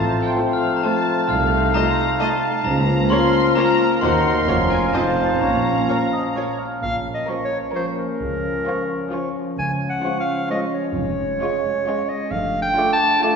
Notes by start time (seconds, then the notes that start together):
Already playing: A1 A2 F3 A3 C4 F4 C5 F5 A5
0.22 G5
0.38 A3 F4 C5
0.53 F5 F6
0.76 A#5
0.83 A3 F4 C5 A5
1.28 C2 A3 D#4 C5 F5 F6
1.74 A3 F4 D#5 A#5
2.20 A3 F4 D#5 A5
2.64 C#2 F3 A#3 C#4 F4 A#4 A#5
3.10 A#3 F4 C#5 C6
3.55 A#3 F4 C#5 A#5
4.01 D#2 D#3 A#3 D#4 F#4 C5 F#5 C6
4.48 F1 F2 F3 A#3 C#4 F4 C#5 F5
4.70 G#5
4.93 F1 F2 C4 D#4 F4 C5 D#5 A5
5.41 A#1 A#2 A#3 C#4 C#5 A#5
5.89 A#3 F4 C#5 F5
6.13 D#5
6.35 A#3 F4 C#5
6.59 F5
6.82 A#1 A#2 A#3 C#4 F5
7.14 D#5
7.29 F3 C#4 A#4 C#6
7.45 C#5
7.74 F3 C#4 A#4 C5 C#6
7.99 A#4
8.21 C#2 C#3 F3
8.66 F3 C#4 F4 C#6
9.12 F3 C#4 F4 C#6
9.58 C#2 C#3 C#4 G#5
9.89 F#5
10.04 F3 G#3 C#4 F4 C#6
10.20 F5
10.50 F3 G#3 C#4 F4 D#5 C#6
10.74 C#5
10.95 F1 F2 G#3
11.41 G#3 C#4 F4 C#6
11.87 G#3 C#4 F4 C#6
12.09 D#5
12.31 F1 F2 A3 D4 F5
12.62 G5
12.78 A3 D4 F4 D6
12.93 A5
13.23 A3 D4 F4 A5 D6